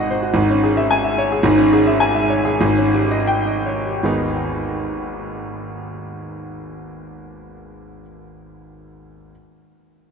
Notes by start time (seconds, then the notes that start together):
Already playing: G#1 G#2 C4 F#4 D#5 F#5
0.10 C5
0.22 F#4
0.34 G#1 G#2
0.50 C#4
0.63 G#4
0.77 E5
0.91 G#5
1.04 E5
1.18 C#5
1.32 G#4
1.43 G#1 G#2
1.58 C#4
1.73 G#4
1.87 E5
2.00 G#5
2.15 E5
2.30 C#5
2.45 G#4
2.61 G#1 G#2
2.78 C#4
2.94 G4
3.11 D#5
3.27 G5
3.47 D#5
3.66 C#5
3.85 G4
4.03 G#1 D#2 G#3 B3 D#4 G#4